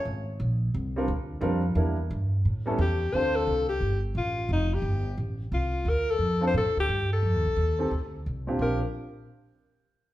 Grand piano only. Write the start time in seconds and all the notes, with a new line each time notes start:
0.96 G3 C4 D4 F4 A#4
1.41 G3 C4 D4 F4 A#4
1.76 G3 A#3 D4 E4 A#4
2.66 G3 B3 C#4 E4 A4
3.14 C4 D4 F4 A4
6.41 C4 D4 F4 A4
7.79 C4 D#4 G4 A4
8.47 A#2 C4 D4 F4 G4
8.61 C4 D4 F4 G4